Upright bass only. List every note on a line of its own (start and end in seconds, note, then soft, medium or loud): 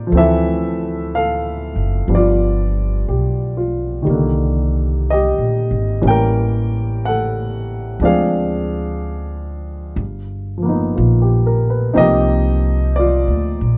0.12 1.72 D2 medium
1.76 2.06 F#1 medium
2.08 3.03 G1 medium
3.09 4.03 B1 medium
4.07 5.35 C2 medium
5.38 5.69 A#1 soft
5.71 6.02 G#1 medium
6.03 7.97 A1 medium
8.00 9.95 D2 medium
9.96 10.93 G1 medium
10.98 11.93 A#1 medium
11.96 13.24 C2 medium
13.28 13.59 D2 medium
13.61 13.78 A#1 medium